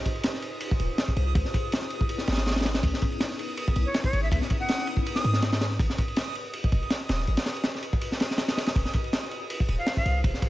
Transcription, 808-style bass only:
0.80 0.89 D#1 medium
1.17 1.34 C2 loud
1.35 1.44 C#2 loud
2.28 2.82 G#1 loud
2.83 2.92 C#2 loud
3.76 3.85 B1 medium
4.13 4.30 G#1 loud
4.32 4.40 C#2 loud
5.24 5.78 G#2 loud
5.79 5.89 G#1 loud
6.72 6.81 F#1 medium
7.09 7.26 D#1 loud
7.28 7.37 G#1 loud
8.76 8.85 F1 loud
9.69 9.78 D#1 medium
10.06 10.22 C2 loud
10.24 10.33 F1 loud

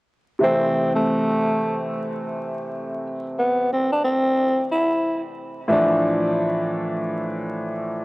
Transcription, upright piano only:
0.39 3.00 C3 medium
0.39 3.01 E3 medium
0.39 3.02 A3 medium
0.44 3.03 C4 medium
5.68 8.05 A2 medium
5.68 8.05 E3 medium
5.68 8.05 F3 medium
5.68 8.05 A3 medium
5.72 8.05 D4 medium

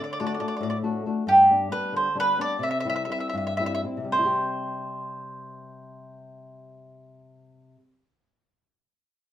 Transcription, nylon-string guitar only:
0.00 0.40 D3 medium
0.20 0.39 A3 medium
0.20 0.40 D4 medium
0.20 0.40 F#4 medium
0.40 0.75 A3 medium
0.40 0.76 D4 soft
0.40 0.76 F#4 soft
0.61 1.03 A2 medium
0.83 1.05 A3 medium
0.83 1.05 D4 soft
0.83 1.06 F#4 medium
1.06 1.22 A3 soft
1.06 1.22 D4 soft
1.06 1.23 F#4 soft
1.27 1.69 G2 medium
1.50 1.70 G3 soft
1.50 1.70 B3 soft
1.50 1.71 D4 medium
1.71 2.07 G3 medium
1.71 2.07 B3 soft
1.71 2.07 D4 medium
1.93 2.37 D3 medium
2.15 2.37 G3 soft
2.15 2.37 B3 soft
2.15 2.37 D4 medium
2.38 2.56 G3 soft
2.38 2.56 B3 soft
2.38 2.56 D4 medium
2.59 3.07 C3 medium
2.85 3.08 G3 medium
2.85 3.08 C4 medium
2.85 3.09 E4 soft
3.09 3.50 G3 soft
3.09 3.50 C4 soft
3.09 3.50 E4 medium
3.33 3.84 G2 medium
3.59 3.83 G3 soft
3.59 3.83 C4 soft
3.59 3.84 E4 medium
3.84 4.03 G3 soft
3.84 4.05 C4 soft
3.84 4.06 E4 medium
3.97 7.75 C3 medium
4.04 7.82 G3 medium
4.12 7.90 C4 medium
4.18 4.25 E4 medium
4.25 8.03 G4 medium

